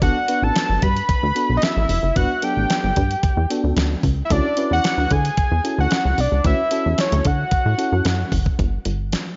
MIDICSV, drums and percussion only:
0, 0, Header, 1, 2, 480
1, 0, Start_track
1, 0, Tempo, 535714
1, 16, Time_signature, 4, 2, 24, 8
1, 8391, End_track
2, 0, Start_track
2, 0, Title_t, "Drums"
2, 16, Note_on_c, 9, 36, 112
2, 16, Note_on_c, 9, 42, 97
2, 106, Note_off_c, 9, 36, 0
2, 106, Note_off_c, 9, 42, 0
2, 254, Note_on_c, 9, 42, 76
2, 343, Note_off_c, 9, 42, 0
2, 498, Note_on_c, 9, 42, 92
2, 504, Note_on_c, 9, 38, 104
2, 587, Note_off_c, 9, 42, 0
2, 593, Note_off_c, 9, 38, 0
2, 737, Note_on_c, 9, 42, 68
2, 740, Note_on_c, 9, 36, 104
2, 826, Note_off_c, 9, 42, 0
2, 830, Note_off_c, 9, 36, 0
2, 865, Note_on_c, 9, 42, 48
2, 955, Note_off_c, 9, 42, 0
2, 975, Note_on_c, 9, 42, 89
2, 977, Note_on_c, 9, 36, 108
2, 1065, Note_off_c, 9, 42, 0
2, 1066, Note_off_c, 9, 36, 0
2, 1218, Note_on_c, 9, 42, 64
2, 1307, Note_off_c, 9, 42, 0
2, 1452, Note_on_c, 9, 42, 84
2, 1462, Note_on_c, 9, 38, 118
2, 1541, Note_off_c, 9, 42, 0
2, 1552, Note_off_c, 9, 38, 0
2, 1695, Note_on_c, 9, 46, 74
2, 1785, Note_off_c, 9, 46, 0
2, 1936, Note_on_c, 9, 42, 92
2, 1937, Note_on_c, 9, 36, 121
2, 2026, Note_off_c, 9, 36, 0
2, 2026, Note_off_c, 9, 42, 0
2, 2171, Note_on_c, 9, 42, 79
2, 2261, Note_off_c, 9, 42, 0
2, 2418, Note_on_c, 9, 42, 87
2, 2423, Note_on_c, 9, 38, 95
2, 2507, Note_off_c, 9, 42, 0
2, 2513, Note_off_c, 9, 38, 0
2, 2655, Note_on_c, 9, 42, 73
2, 2659, Note_on_c, 9, 36, 97
2, 2744, Note_off_c, 9, 42, 0
2, 2749, Note_off_c, 9, 36, 0
2, 2784, Note_on_c, 9, 42, 47
2, 2873, Note_off_c, 9, 42, 0
2, 2895, Note_on_c, 9, 42, 92
2, 2897, Note_on_c, 9, 36, 107
2, 2985, Note_off_c, 9, 42, 0
2, 2987, Note_off_c, 9, 36, 0
2, 3140, Note_on_c, 9, 42, 72
2, 3230, Note_off_c, 9, 42, 0
2, 3374, Note_on_c, 9, 42, 90
2, 3384, Note_on_c, 9, 38, 118
2, 3464, Note_off_c, 9, 42, 0
2, 3474, Note_off_c, 9, 38, 0
2, 3614, Note_on_c, 9, 36, 90
2, 3615, Note_on_c, 9, 46, 66
2, 3703, Note_off_c, 9, 36, 0
2, 3705, Note_off_c, 9, 46, 0
2, 3857, Note_on_c, 9, 36, 106
2, 3857, Note_on_c, 9, 42, 100
2, 3946, Note_off_c, 9, 42, 0
2, 3947, Note_off_c, 9, 36, 0
2, 4094, Note_on_c, 9, 42, 81
2, 4183, Note_off_c, 9, 42, 0
2, 4339, Note_on_c, 9, 42, 79
2, 4345, Note_on_c, 9, 38, 93
2, 4429, Note_off_c, 9, 42, 0
2, 4434, Note_off_c, 9, 38, 0
2, 4575, Note_on_c, 9, 42, 77
2, 4579, Note_on_c, 9, 36, 102
2, 4664, Note_off_c, 9, 42, 0
2, 4669, Note_off_c, 9, 36, 0
2, 4703, Note_on_c, 9, 42, 57
2, 4793, Note_off_c, 9, 42, 0
2, 4815, Note_on_c, 9, 42, 89
2, 4817, Note_on_c, 9, 36, 121
2, 4904, Note_off_c, 9, 42, 0
2, 4907, Note_off_c, 9, 36, 0
2, 5060, Note_on_c, 9, 42, 61
2, 5150, Note_off_c, 9, 42, 0
2, 5293, Note_on_c, 9, 42, 80
2, 5303, Note_on_c, 9, 38, 112
2, 5382, Note_off_c, 9, 42, 0
2, 5393, Note_off_c, 9, 38, 0
2, 5537, Note_on_c, 9, 46, 72
2, 5627, Note_off_c, 9, 46, 0
2, 5774, Note_on_c, 9, 42, 97
2, 5776, Note_on_c, 9, 36, 116
2, 5864, Note_off_c, 9, 42, 0
2, 5866, Note_off_c, 9, 36, 0
2, 6011, Note_on_c, 9, 42, 82
2, 6101, Note_off_c, 9, 42, 0
2, 6253, Note_on_c, 9, 42, 87
2, 6259, Note_on_c, 9, 38, 82
2, 6343, Note_off_c, 9, 42, 0
2, 6349, Note_off_c, 9, 38, 0
2, 6382, Note_on_c, 9, 42, 54
2, 6472, Note_off_c, 9, 42, 0
2, 6493, Note_on_c, 9, 42, 83
2, 6499, Note_on_c, 9, 36, 106
2, 6582, Note_off_c, 9, 42, 0
2, 6588, Note_off_c, 9, 36, 0
2, 6732, Note_on_c, 9, 42, 86
2, 6736, Note_on_c, 9, 36, 113
2, 6821, Note_off_c, 9, 42, 0
2, 6825, Note_off_c, 9, 36, 0
2, 6977, Note_on_c, 9, 42, 70
2, 7066, Note_off_c, 9, 42, 0
2, 7212, Note_on_c, 9, 42, 84
2, 7222, Note_on_c, 9, 38, 117
2, 7302, Note_off_c, 9, 42, 0
2, 7312, Note_off_c, 9, 38, 0
2, 7454, Note_on_c, 9, 36, 90
2, 7458, Note_on_c, 9, 46, 80
2, 7544, Note_off_c, 9, 36, 0
2, 7547, Note_off_c, 9, 46, 0
2, 7581, Note_on_c, 9, 36, 95
2, 7671, Note_off_c, 9, 36, 0
2, 7697, Note_on_c, 9, 36, 106
2, 7697, Note_on_c, 9, 42, 88
2, 7786, Note_off_c, 9, 42, 0
2, 7787, Note_off_c, 9, 36, 0
2, 7932, Note_on_c, 9, 42, 81
2, 8022, Note_off_c, 9, 42, 0
2, 8176, Note_on_c, 9, 42, 79
2, 8182, Note_on_c, 9, 38, 90
2, 8265, Note_off_c, 9, 42, 0
2, 8271, Note_off_c, 9, 38, 0
2, 8391, End_track
0, 0, End_of_file